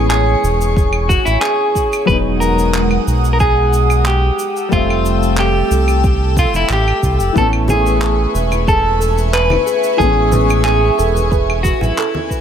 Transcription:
Already playing: A1 E3 G#3 B3 C#4 C#5 G#5 C#6
0.10 G#4, clap, shaker
0.43 E1, shaker
0.61 shaker
0.76 kick, shaker
0.93 claves
1.09 F#4, kick, shaker
1.25 A1 E4, shaker
1.41 G#4, clap, shaker
1.75 kick, shaker
1.93 claves, shaker
2.05 E1 F#3 G#3 B4 F#5 D#6, kick, shaker
2.10 B3 D#4
2.40 A#4, shaker
2.59 shaker
2.75 clap, shaker
2.91 claves
3.07 B1, shaker
3.24 shaker
3.33 A#4
3.40 G#4, kick, shaker
3.73 shaker
3.90 claves, shaker
4.06 G4, clap, shaker
4.39 A4 G5 E6, shaker
4.57 shaker
4.69 F1 G3 A3 F4, kick, shaker
4.73 C4 E5
4.90 claves
5.05 shaker
5.23 shaker
5.38 G4, clap, shaker
5.71 C2, shaker
5.88 claves, shaker
6.04 kick, shaker
6.37 F4, kick, shaker
6.54 F1 E4, shaker
6.69 A1 G4, clap, shaker
6.88 claves
7.03 C2, kick, shaker
7.19 F1, shaker
7.33 A1 E3 A3 B4 E5 G#5 C#6, kick, shaker
7.37 B3 C#4 A4
7.53 claves
7.68 G#4, high conga, low conga, shaker
7.86 shaker
8.02 A4, clap, shaker
8.34 E1 B4, shaker
8.51 high conga, claves, shaker
8.67 G#4 A4, kick, shaker
9.00 A4, shaker
9.18 shaker
9.33 B4, clap, shaker
9.50 high conga, claves
9.66 G#4, shaker
9.83 shaker
9.97 A1 E3 G#3 G#4 A4, kick, shaker
10.01 B3 C#4
10.32 B4, high conga, low conga, shaker
10.50 claves, shaker
10.64 G#4, clap, shaker
10.98 E1 A4, shaker
11.15 high conga, shaker
11.31 B4, kick, shaker
11.50 claves
11.63 F#4 G#4, kick, shaker
11.81 A1 E4, low conga, shaker
11.97 A4, clap, shaker
12.15 high conga
12.30 B4, kick, shaker

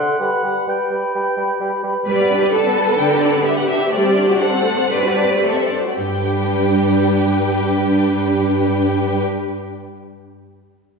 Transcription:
Already playing: A4 F#5 C6
0.19 G3 B4 F#5 B5
0.44 G3 B4 B5
0.67 G3 B4 G5 B5
0.91 G3 B4 B5
1.14 G3 B4 B5
1.37 G3 B4 B5
1.61 G3 B4 B5
1.84 G3 B4 B5
2.08 G3 B4 D5
2.20 B3
2.32 D4
2.42 G4
2.54 D4 A4 A5
2.65 B3
2.77 G3
2.89 B3
2.99 D3 D4 G5
3.12 G4
3.24 D4 D5
3.35 B3
3.46 G3 G4 E5
3.57 B3 F#5
3.68 D4 E5
3.80 G4
3.91 G3 A3 C5 D5
4.05 C4
4.17 D4
4.28 F#4
4.40 D4 A4 F#5
4.53 C4
4.65 A3
4.78 C4
4.91 G3 D4 B4 D5
5.03 F#4
5.16 D4
5.28 C4
5.42 A3 A4
5.54 C4 E5
5.65 D5
5.70 D4
5.77 C5
5.84 F#4
5.89 D5
5.97 G2 G3 D4 G4 B4 G5

